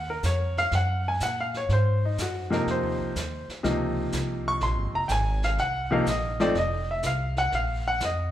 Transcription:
Already playing: D#2
0.10 A#4
0.23 F2 C#5, snare, hi-hat pedal
0.57 F5, snare
0.71 F#2 F#5, brush sweep, snare
1.08 G#5
1.20 A#2 F#5, snare, hi-hat pedal
1.41 F5
1.54 C#5, snare
1.69 G#2 C5, brush sweep, snare
2.05 D#4
2.18 F#4, snare, hi-hat pedal
2.50 C3 F3 A#3 D#4 A#4, snare
2.66 F2, brush sweep, snare
2.71 C5
2.83 D#2
2.99 C2
3.15 D#2, snare, hi-hat pedal
3.48 muted upright bass stroke, snare
3.63 C#2 C3 F3 A#3 D#4, brush sweep, snare
4.12 C2, snare, hi-hat pedal
4.48 C#6
4.61 A#1 C6, brush sweep, snare
4.77 G#1
4.93 F1 A#5
5.08 G#1 G5 G#5, snare, hi-hat pedal
5.43 F5, snare
5.58 C2 F#5, brush sweep, snare
5.91 C3 F3 A#3 D#4 F5
6.06 A#1 D#5, snare, hi-hat pedal
6.40 F3 A3 C4 D#4 D5, snare
6.54 F1 D#5, brush sweep, snare
6.91 E5
7.03 C2 F5, snare, hi-hat pedal
7.37 F#5, snare
7.52 A#1 F5, brush sweep, snare
7.88 F#5
8.00 F2, snare, hi-hat pedal
8.05 D#5

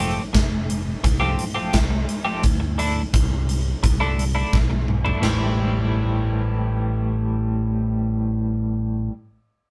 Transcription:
Already playing: F1
0.00 F3 A3 C4 G4, closed hi-hat
0.33 F1, muted clean electric guitar stroke, kick, snare, closed hi-hat
0.70 closed hi-hat
1.04 C2, muted clean electric guitar stroke, kick, closed hi-hat
1.20 F3 A3 C4 G4
1.39 closed hi-hat
1.54 F3 A3 C4 G4
1.73 C2, kick, snare, closed hi-hat
1.90 muted clean electric guitar stroke
2.09 closed hi-hat
2.25 F3 A3 C4 G4
2.43 D2, kick, closed hi-hat
2.60 muted clean electric guitar stroke
2.78 D3 A3 D4 E4, closed hi-hat
3.13 C2, muted clean electric guitar stroke, kick, closed hi-hat
3.49 closed hi-hat
3.83 C2, muted clean electric guitar stroke, kick, closed hi-hat
4.00 D3 A3 D4 E4
4.19 closed hi-hat
4.35 D3 A3 D4 E4
4.53 B1, kick, snare
4.70 muted clean electric guitar stroke, high tom
4.88 mid tom
5.05 D3 A3 D4 E4, floor tom
5.21 A1 A2 E3 G3 C4 E4, snare, floor tom, crash

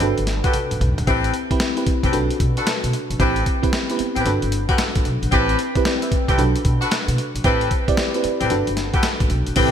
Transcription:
Already playing: D5 G5
0.00 G1 D4 F#4 A4 B4, closed hi-hat
0.18 G1, closed hi-hat
0.27 snare, closed hi-hat
0.44 F#4 G4 A4 B4, kick, closed hi-hat
0.54 closed hi-hat, high tom
0.71 A1, closed hi-hat, mid tom
0.81 B1, closed hi-hat, mid tom
0.98 A#1, closed hi-hat, floor tom
1.07 A1 C4 E4 G4 A4 B4, kick, closed hi-hat
1.24 closed hi-hat
1.34 closed hi-hat
1.51 C4 E4 G4 B4, muted upright bass stroke, kick, closed hi-hat
1.60 snare, closed hi-hat
1.77 C4 E4 G4 B4, closed hi-hat
1.87 muted upright bass stroke, kick, closed hi-hat
2.03 C2 C4 G4 A4 B4, kick, closed hi-hat
2.13 B1 D4 F#4 A4 B4, closed hi-hat
2.31 closed hi-hat
2.40 B2, kick, closed hi-hat
2.57 D4 F#4 A4 B4, closed hi-hat
2.67 snare, closed hi-hat
2.84 B2, closed hi-hat
2.93 closed hi-hat
3.10 A#1, closed hi-hat
3.19 A1 C4 E4 G4 A4 B4, kick, closed hi-hat
3.36 closed hi-hat
3.46 kick, closed hi-hat
3.62 C4 E4 G4 B4, muted upright bass stroke, kick, closed hi-hat
3.73 snare, closed hi-hat
3.90 B3 E4 G4 B4, closed hi-hat
3.97 C4, muted upright bass stroke, closed hi-hat
4.16 A1 C4 G4 A4 B4, closed hi-hat
4.25 G1 D4 F#4 A4 B4, closed hi-hat
4.42 G1, closed hi-hat
4.52 closed hi-hat
4.69 F#4 G4 A4 B4, kick, closed hi-hat
4.78 snare, closed hi-hat
4.95 A1, kick, closed hi-hat
5.05 B1, closed hi-hat
5.22 A#1, closed hi-hat
5.32 A1 C4 E4 G4 A4 B4, kick, closed hi-hat
5.49 closed hi-hat
5.59 closed hi-hat
5.75 C4 E4 G4 B4, muted upright bass stroke, kick, closed hi-hat
5.85 D5 G5, snare, closed hi-hat
6.02 B4 E5, closed hi-hat
6.11 muted upright bass stroke, kick, closed hi-hat
6.28 C2 C4 G4 A4 B4 C5, kick, closed hi-hat
6.38 B1 D4 F#4 A4 B4, closed hi-hat
6.55 closed hi-hat
6.65 B2, kick, closed hi-hat
6.81 D4 F#4 A4 B4, closed hi-hat
6.91 snare, closed hi-hat
7.08 B2, closed hi-hat
7.18 closed hi-hat
7.35 A#1, closed hi-hat
7.44 A1 C4 E4 G4 A4 B4, kick, closed hi-hat
7.61 closed hi-hat
7.71 kick, closed hi-hat
7.88 C4 E4 G4 D5, muted upright bass stroke, kick, closed hi-hat
7.97 snare, closed hi-hat
8.14 C4 E4 G4 B4, closed hi-hat
8.24 muted upright bass stroke, closed hi-hat
8.41 A1 C4 G4 A4 B4, closed hi-hat
8.50 G1 D4 F#4 A4 B4, closed hi-hat
8.67 G1, closed hi-hat
8.77 snare, closed hi-hat
8.94 F#4 G4 A4 B4, kick, closed hi-hat
9.03 snare, closed hi-hat
9.20 A1, kick, closed hi-hat
9.30 B1, closed hi-hat
9.47 A#1, closed hi-hat
9.56 A1 C3 A3 C4 E4 G4 A4 B4, kick, closed hi-hat, crash, cowbell

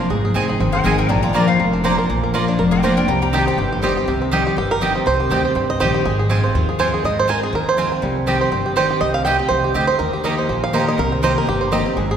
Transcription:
Already playing: C5
0.00 D4
0.10 G#1 G#2 G#4
0.25 G#4
0.34 F1 G#3 C4 D#4 G#4 D#5 G#5
0.49 D#4 G#4
0.60 G1 D#3 C4
0.72 A#4 C5 G5
0.84 G#1 G#3 C4 D#4 G#4 A#4 D#5 G5 G#5
0.98 C4 A#4 G5
1.09 A#1 A#2 D4 D5 A#5
1.22 F4 D5 A#5
1.33 F3 A#3 D4 F4 A#4 D5 A#5
1.48 C5 F5
1.60 F1 F2 A#4
1.73 D4
1.84 F3 A#3 D4 F4 C5 D5 A#5
1.98 A#4
2.09 A#1 A#2 A#3
2.23 A#4
2.34 F3 A#3 D4 F4 D5 A#5
2.48 D4
2.58 F1 F2 A#4
2.71 F4 A#4 G5
2.83 F3 A#3 D4 F4 A#4 C5 D5 G5 A#5
2.97 D4 A#4 G5
3.08 C2 C3 G3 G5 A#5
3.22 G4 G5 A#5
3.33 D#3 G3 C4 G4 D#5 G5 A#5
3.47 C4 G5
3.58 G1 G2 G4
3.73 G4
3.82 D#3 G3 C4 G4 C5 D#5 G5
3.96 C4 G4
4.07 C2 C3 G4
4.22 C4
4.32 D#3 G3 C4 D#4 G4 D#5 G5
4.47 G4
4.56 G1 G2 G4
4.71 A#4
4.81 D#3 G3 C4 G4 D#5 G5
4.95 C4
5.06 C2 C3 C5
5.20 G4
5.30 D2 D#3 G3 C4 G4 D#5 G5
5.44 C4 G4 C5
5.55 C2 G2 C4
5.70 D#5
5.80 A#1 D#3 G3 C4 G4 C5 D#5 G5
5.94 G4
6.05 G#1 G#3 G#4
6.19 G#4
6.29 G#3 C4 F4 C5 G#5
6.43 C4 F4 C5
6.54 D#2 D#3 F4
6.69 G#4
6.79 G#3 C4 F4 C5 G#5
6.94 G#4
7.04 G#1 G#3 D#5
7.19 C5
7.28 G#3 C4 F4 A#4 C5 G#5
7.43 G#4
7.53 D#2 D#3 A#4
7.69 C5
7.77 G#3 C4 F4 C5 G#5
7.92 C4
8.02 C2 C3 G3
8.26 D#3 G3 C4 G4 D#5 G5
8.41 C5
8.51 G1 G2 C4
8.66 G4
8.76 D#3 G3 C4 G4 C5 D#5 G5
8.90 G4
9.01 C2 C3 D#5
9.14 F5
9.25 D#3 G3 C4 G4 D#5 G5
9.38 C4 G4
9.49 C2 C3 C5
9.64 G4
9.74 D2 D3 C4 G4 D#5 G5
9.87 C5
9.99 D#2 D#3 A#4
10.13 G4
10.24 D#3 A#3 D#4 G4 D#5 A#5
10.38 C5
10.49 A#1 A#2 G4
10.64 F5
10.73 D#3 A#3 D#4 G4 C5 D#5 A#5
10.88 D#5
10.98 C2 C3 A#4
11.12 C4
11.22 D#3 A#3 C4 G4 C5 D#5 A#5
11.38 A#4
11.47 G1 G2 G4
11.61 C5
11.71 D#3 A#3 C4 G4 D#5 A#5
11.85 C4 G4
11.96 G#1 G#2 G#4
12.11 G#4

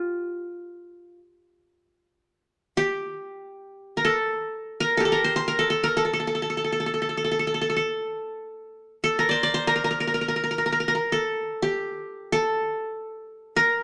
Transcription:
Already playing: F4 G4
2.77 G4
3.97 A#4
4.05 A4
4.80 A#4
4.97 G4 A4
5.05 A4
5.12 A#4
5.24 C5
5.36 C5
5.48 A#4
5.59 A4
5.70 A4
5.84 A#4
5.97 A4
6.05 A4
6.13 A4
6.20 A4
6.27 A4
6.35 A4
6.42 A4
6.50 A4
6.57 A4
6.64 A4
6.72 A4
6.80 A4
6.86 A4
6.94 A4
7.02 A4
7.09 A4
7.17 A4
7.24 A4
7.31 A4
7.39 A4
7.47 A4
7.54 A4
7.61 A4
7.70 A4
7.76 A4
9.04 A4
9.19 A#4
9.29 C5 D5
9.43 D5
9.54 C5
9.67 A#4
9.76 A#4
9.84 A#4
9.91 A#4
10.00 A#4
10.07 A#4
10.14 A#4
10.21 A#4
10.28 A#4
10.36 A#4
10.44 A#4
10.51 A#4
10.58 A#4
10.66 A#4
10.72 A#4
10.80 A#4
10.88 A#4
10.95 A#4
11.12 A4
11.62 G4
12.32 A4
13.56 A#4

